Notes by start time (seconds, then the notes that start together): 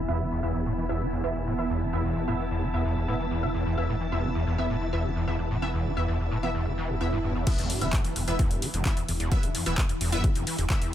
Already playing: E3 B3 E4 E5 B5
0.08 E1 E2 B3 E4 E5
0.20 E3
0.32 E2
0.43 E2 B3 E4 E5
0.55 E2
0.65 A2 A5
0.78 E3
0.89 E2 B3 E4 E5
1.01 E3
1.12 E2
1.24 E2 B3 E4 E5
1.35 E2
1.47 A2
1.58 E3 B3 E4 E5
1.70 E2
1.81 E3
1.93 E2 B3 E4 E5
2.05 E2
2.16 E2
2.28 A2 B3 E4 E5
2.39 E3
2.51 E2
2.62 E3
2.74 E2 B3 E4 E5
2.85 E2
2.97 E2
3.08 A2 B3 E4 E5
3.20 E3
3.31 E2
3.43 E3 B3 E4 E5
3.54 E2
3.66 E2
3.78 E2 B3 E4 E5
3.89 A2
4.00 E3
4.12 E2 B3 E4 E5
4.24 E3
4.35 E2
4.47 E2
4.58 E2 B3 E4 E5
4.70 A2
4.82 E3
4.93 E2 B3 E4 E5
5.05 E3
5.16 E2
5.28 E2 B3 E4 E5
5.39 E2
5.51 A2
5.62 E3 B3 E4 E5
5.74 E2
5.85 E3
5.97 E2 B3 E4 E5
6.08 E2
6.20 E2
6.31 A2
6.43 E3 B3 E4 E5
6.54 E2, swell
6.66 E3
6.78 E3
6.89 E2
7.01 E2 B3 E4 E5
7.12 G2
7.24 G2
7.35 E2
7.47 E2 E3 B3 E4 E5, kick, closed hi-hat, crash, impact
7.58 E1 E2, closed hi-hat
7.70 G2, open hi-hat
7.81 D1 E3 B3 E4 E5, closed hi-hat
7.93 F2, kick, clap, closed hi-hat
8.04 E3, closed hi-hat
8.16 E1 E2, open hi-hat
8.28 E1 E2 B3 E4 E5, closed hi-hat
8.39 E2, kick, closed hi-hat
8.51 E1 G2, closed hi-hat
8.62 E3, open hi-hat
8.74 E1 F2, closed hi-hat
8.85 E3 B3 E4 E5, kick, clap, closed hi-hat
8.97 E2, closed hi-hat
9.08 E1 E2, open hi-hat
9.20 E1 E2, closed hi-hat
9.32 G2 B3 E4 E5, kick, closed hi-hat
9.43 E1 E3, closed hi-hat
9.54 F2, open hi-hat
9.66 D1 E3 B3 E4 E5, closed hi-hat
9.78 E2, kick, clap, closed hi-hat
9.89 E2, closed hi-hat
10.01 E1 E2, open hi-hat
10.12 E1 G2 B3 E4 E5, closed hi-hat
10.24 E3, kick, closed hi-hat
10.35 E1 F2, closed hi-hat
10.47 E3, open hi-hat
10.58 E1 E2, closed hi-hat
10.70 B3 E4 E5, kick, clap, closed hi-hat
10.81 E2, closed hi-hat